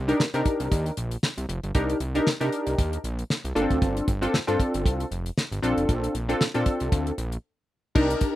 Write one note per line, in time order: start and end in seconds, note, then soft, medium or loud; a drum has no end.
0.00 0.13 C2 loud
0.08 0.21 D4 medium
0.08 0.22 D#4 medium
0.08 0.22 G4 medium
0.08 0.22 A#4 loud
0.08 closed hi-hat medium
0.20 0.26 C3 soft
0.20 snare loud
0.34 0.43 C3 medium
0.34 0.92 D4 medium
0.34 0.92 D#4 medium
0.34 0.92 G4 medium
0.34 0.92 A#4 medium
0.34 closed hi-hat soft
0.46 kick loud
0.46 closed hi-hat medium
0.60 0.69 C2 medium
0.60 closed hi-hat medium
0.71 0.91 D#2 loud
0.71 kick loud
0.71 closed hi-hat medium
0.86 closed hi-hat soft
0.97 1.17 A#1 medium
0.97 closed hi-hat medium
1.11 closed hi-hat medium
1.23 snare loud
1.37 1.46 C2 medium
1.37 closed hi-hat medium
1.49 1.60 F1 loud
1.49 closed hi-hat medium
1.64 1.72 G1 medium
1.64 closed hi-hat soft
1.75 1.95 C2 loud
1.75 1.97 D4 medium
1.75 1.97 D#4 medium
1.75 1.97 G4 medium
1.75 1.98 A#4 medium
1.75 kick loud
1.75 closed hi-hat medium
1.90 closed hi-hat medium
2.00 2.20 C2 loud
2.00 closed hi-hat medium
2.15 2.28 D4 medium
2.15 2.29 D#4 medium
2.15 2.29 G4 medium
2.15 2.29 A#4 loud
2.15 closed hi-hat medium
2.27 2.33 C3 soft
2.27 snare loud
2.40 2.50 C3 loud
2.40 2.99 D4 medium
2.40 2.99 D#4 medium
2.40 2.99 G4 medium
2.40 2.99 A#4 medium
2.40 closed hi-hat soft
2.52 closed hi-hat medium
2.67 2.75 C2 medium
2.67 closed hi-hat medium
2.79 2.98 D#2 loud
2.79 kick loud
2.79 closed hi-hat medium
2.93 closed hi-hat soft
3.04 3.24 A#1 loud
3.04 closed hi-hat medium
3.19 closed hi-hat medium
3.30 snare loud
3.44 3.53 C2 medium
3.44 closed hi-hat medium
3.55 3.67 G1 medium
3.55 3.63 A#3 medium
3.55 4.07 D4 medium
3.55 4.08 F4 medium
3.55 4.08 A4 loud
3.55 closed hi-hat medium
3.62 4.10 C4 medium
3.70 3.79 D2 medium
3.70 kick medium
3.70 closed hi-hat soft
3.82 4.01 G1 loud
3.82 kick loud
3.82 closed hi-hat medium
3.97 closed hi-hat soft
4.08 4.27 G1 loud
4.08 kick medium
4.08 closed hi-hat medium
4.22 4.35 C4 medium
4.22 4.35 D4 medium
4.22 4.36 F4 medium
4.22 4.36 A4 loud
4.22 closed hi-hat soft
4.34 4.40 G2 soft
4.34 snare loud
4.47 4.57 G2 loud
4.47 5.05 C4 medium
4.47 5.06 D4 medium
4.47 5.06 F4 medium
4.47 5.06 A4 medium
4.47 closed hi-hat soft
4.60 kick medium
4.60 closed hi-hat medium
4.74 4.87 G1 loud
4.74 closed hi-hat medium
4.86 5.05 C2 loud
4.86 kick loud
4.86 closed hi-hat medium
5.00 closed hi-hat soft
5.11 5.31 F1 medium
5.11 closed hi-hat medium
5.26 closed hi-hat medium
5.38 snare loud
5.52 5.60 G1 medium
5.52 closed hi-hat soft
5.62 5.74 A#1 loud
5.62 6.14 C4 medium
5.62 6.14 D4 medium
5.62 6.15 F4 medium
5.62 6.15 A4 loud
5.62 closed hi-hat medium
5.77 5.86 F1 medium
5.77 closed hi-hat soft
5.89 6.08 A#1 loud
5.89 kick loud
5.89 closed hi-hat medium
6.04 closed hi-hat medium
6.15 6.34 A#1 medium
6.15 closed hi-hat medium
6.29 6.42 C4 medium
6.29 6.42 D4 medium
6.29 6.42 F4 medium
6.29 6.43 A4 medium
6.29 closed hi-hat medium
6.41 6.46 A#2 soft
6.41 snare loud
6.54 6.64 A#2 medium
6.54 7.12 C4 medium
6.54 7.13 D4 medium
6.54 7.13 F4 medium
6.54 7.13 A4 medium
6.54 closed hi-hat soft
6.66 kick medium
6.66 closed hi-hat medium
6.80 6.90 C2 medium
6.80 closed hi-hat medium
6.92 7.12 D2 loud
6.92 kick loud
6.92 closed hi-hat medium
7.07 closed hi-hat soft
7.18 7.38 A#1 medium
7.18 closed hi-hat medium
7.32 closed hi-hat soft
7.95 8.15 C2 loud
7.95 8.35 D4 medium
7.95 8.35 D#4 medium
7.95 8.35 G4 medium
7.95 8.35 A#4 loud
7.95 kick loud
7.95 crash medium
8.10 closed hi-hat medium
8.21 kick loud
8.21 closed hi-hat medium